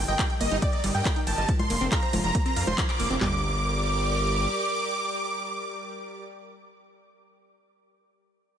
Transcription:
Already playing: G3 G4 A#4 D#5
0.08 G1 D#5 G5, closed hi-hat
0.19 G3, kick, clap, closed hi-hat, ride
0.30 closed hi-hat
0.41 G1 A#3 D#5, open hi-hat, ride
0.51 G1 D#4, closed hi-hat
0.62 D5 G5, kick, closed hi-hat, ride
0.73 D#5, closed hi-hat
0.84 G1 G3, open hi-hat, ride
0.95 G2 G5, closed hi-hat
1.05 A#3, kick, clap, closed hi-hat, ride
1.16 D#4, closed hi-hat
1.27 G1 G5 A5, open hi-hat, ride
1.38 G1 D#5, closed hi-hat
1.48 F3 F4 C5, kick, closed hi-hat, ride
1.59 C6, closed hi-hat, high conga
1.70 F1 A#3, open hi-hat, ride
1.81 F1 C4, closed hi-hat
1.92 F5 A#5, kick, clap, closed hi-hat, ride
2.02 C5, closed hi-hat
2.13 F1 F3, open hi-hat, ride, high conga
2.24 F1 A#5, closed hi-hat
2.35 A#3, kick, closed hi-hat, ride
2.46 C4 A#5, closed hi-hat
2.56 F2 F5, open hi-hat, ride
2.67 F1 C5 C6, closed hi-hat, high conga
2.78 F3, kick, clap, closed hi-hat, ride
2.89 D6, clap, closed hi-hat
3.00 F1 A#3, open hi-hat, ride
3.10 F1 C4, closed hi-hat
3.21 G1 G3 G4 A#4 D5 D6, snare, clap, floor tom

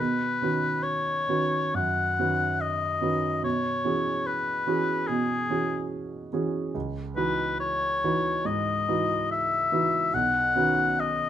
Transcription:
0.00 B2 B4
0.42 D#3 C#4 F#4 B4
0.83 C#5
1.28 D#3 C#4 F#4 B4
1.74 F#2 F#5
2.19 D#3 C#4 F#4 B4
2.61 D#5
3.01 D#3 C#4 F#4 B4
3.43 B2 C#5
3.84 E3 C#4 F#4 G#4
4.27 B4
4.67 E3 C#4 F#4 G#4
5.07 B2 G#4
5.50 E3 C#4 F#4 G#4
6.32 E3 C#4 F#4 G#4
6.75 C#2
7.16 E3 D#4 F#4 B4
7.60 C#5
8.04 E3 D#4 F#4 B4
8.45 G#2 D#5
8.88 E3 D#4 F#4 B4
9.31 E5
9.72 E3 D#4 F#4 B4
10.14 B1 F#5
10.55 D#3 C#4 F#4 B4
11.00 D#5

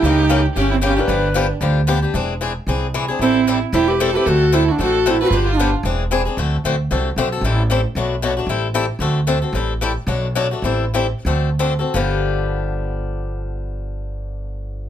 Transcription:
0.02 C#2 C#3 E3 A#3 C#4 D#4 G4
0.29 C#3 E3 A#3 C#4 G4
0.56 G1 C#3 E3 A#3 C#4 G4
0.60 C#4
0.71 C4 E4
0.81 C#3 E3 A#3 C#4 G4
0.96 A#3 C#4 D4 G4 B4
1.08 G1 D3 F3 B3 D4 G4
1.34 D3 F3 B3 D4 G4
1.60 D2 D3 F3 B3 D4 G4
1.87 D3 F3 B3 D4 G4
2.02 B3 D4 G4
2.14 E1 E3 C4 D4 G#4
2.41 E3 C4 D4 G#4
2.67 C2 E3 C4 D4 G#4
2.94 E3 C4 D4 G#4
3.08 C4 D4 G#4
3.19 A1 E3 G3 C4 E4 A4
3.47 E3 G3 C4 E4 A4
3.72 E1 E3 G3 C4 E4 G4 A4
3.88 G4 B4
4.00 E3 G3 C4 E4 A4 C5
4.11 F#4 A4
4.15 C4 E4 G4 A4 B4
4.26 D2 D3 A3 C4 F#4 A4
4.52 D3 A3 C4 E4 F#4 A4
4.68 D4 F#4
4.78 A1 D3 A3 C4 F#4 A4
4.83 F#4
5.06 D3 A3 C4 F#4 A4
5.10 E4
5.21 C4 F#4 A4 B4
5.28 G1 F4
5.32 D3 F3 B3 D4 G4
5.48 F4
5.52 D#4
5.57 D3 F3 B3 D4 G4
5.83 E1 E3 C4 D4 G#4
6.11 E3 C4 D4 G#4
6.25 C4 D4 G#4
6.37 D2 D3 A3 C4 F#4 A4
6.64 D2 D3 A3 C4 F#4 A4
6.91 C2 D3 A3 C4 F#4 A4
7.16 B1 D3 A3 C4 F#4 A4
7.32 C4 F#4 A4
7.41 A1 E3 G3 C4 E4 A4
7.70 E3 G3 C4 E4 A4
7.95 B1 B2 F#3 A3 D4 F#4
8.22 B2 F#3 A3 D4 F#4
8.37 A3 D4 F#4
8.46 A1 E3 G3 C4 E4 A4
8.74 E3 G3 C4 E4 A4
8.99 D2 D3 A3 C4 F#4 A4
9.27 D3 A3 C4 F#4 A4
9.42 C4 F#4 A4
9.53 A1 E3 G3 C4 E4 A4
9.81 E3 G3 C4 E4 A4
10.07 B1 B2 F#3 A3 D4 F#4
10.35 B2 F#3 A3 D4 F#4
10.51 A3 D4 F#4
10.62 A1 E3 G3 C4 E4 A4
10.94 E3 G3 C4 E4 A4
11.25 D2 D3 A3 C4 F#4 A4
11.59 D3 A3 C4 F#4 A4
11.79 C4 F#4 A4
11.94 G1 G2 D3 F3 B3 D4 G4

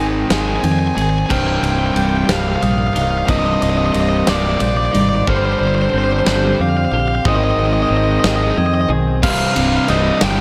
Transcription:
Already playing: G#1 G#2 D#3 G#3 C4 G#4 C5
0.00 A#6
0.30 G#1 G#2 D#3 G#3 D#4 G#5, snare, ride
0.41 G#5
0.48 G#5
0.56 G#5
0.63 F2 G#2 D#3 C4 G#5 G#6, ride
0.72 G#5
0.79 G#5
0.87 G#5
0.95 G#1 G#2 D#3 G#4 G#5, ride
1.02 G#5
1.10 G#5
1.19 G#5
1.26 C2 G2 C3 A#3 G#5
1.30 C1 C2 G4 G5 F6, kick, crash
1.39 G5
1.47 G5
1.55 G5
1.63 C1 G5, ride
1.70 G5
1.79 G5
1.86 G5
1.94 C1 G3 G5 G6, ride
2.01 G5
2.10 G5
2.17 G5
2.25 C1 C2 G2 G5, snare, ride
2.29 C3 A#3 F5
2.40 F5
2.48 F5
2.56 F5
2.61 A#1 C2 G2 G3 F5 D#6, ride
2.71 F5
2.78 F5
2.87 F5
2.94 C1 C2 G2 D#4 F5, ride
3.02 F5
3.11 F5
3.18 F5
3.26 C1 C2 G2 C3 F4 F5 D#6, kick, ride
3.30 D#5
3.39 D#5
3.46 D#5
3.54 D#5
3.62 C1 D#5, ride
3.69 D#5
3.77 D#5
3.86 D#5
3.93 C1 G3 D#5 A#6, ride
4.01 D#5
4.09 D#5
4.17 D#5
4.27 C1 C2 G2 C3 A#3 D5, snare, ride
4.36 D5
4.45 D5
4.51 D5
4.60 A#1 C2 G2 G3 D5 G6, ride
4.69 D5
4.76 D5
4.85 D5
4.92 G#1 C2 G2 D#4 D5, ride
5.00 D5
5.09 D5
5.15 D5
5.27 G1 G2 D3 G3 C4 G4 C5 F6, kick
5.37 C5
5.45 C5
5.53 C5
5.59 G1 C5
5.67 C5
5.75 C5
5.82 C5
5.90 G1 C4 C5
5.95 C5 G6
6.04 C5
6.13 C5
6.19 C5
6.26 G1 G2 D3 G3 D4 C5, snare
6.59 F2 G2 D3 C4 F5 D6
6.69 F5
6.77 F5
6.85 F5
6.92 A#1 G2 D3 G4 F5
7.00 F5
7.08 F5
7.15 F5
7.24 G#1 G#2 D#3 G#3 G#4 D#6, kick
7.28 D#5
7.36 D#5
7.44 D#5
7.51 D#5
7.57 G#1 D#5
7.66 D#5
7.73 D#5
7.82 D#5
7.89 G#1 C4 D#5 A#6
7.97 D#5
8.04 D#5
8.11 D#5
8.19 D#5
8.24 G#1 G#2 D#3 G#3 D#4 D#5, snare
8.36 D#5
8.43 D#5
8.50 D#5
8.57 F2 G#2 D#3 C4 D#5 G#6
8.66 D#5
8.74 D#5
8.81 D#5
8.89 B1 G#2 D#3 G#4
9.22 C1 C2 G2 C3 F5 F6, kick, crash
9.30 F5
9.38 F5
9.45 F5
9.54 C1 C2 G2 C3 F5, ride
9.61 F5
9.68 F5
9.77 F5
9.84 C2 F5, ride
9.89 C1 G2 C3 G3 D#5 G6
10.21 G1 C2 G2 C3 G5, snare, ride
10.31 G5

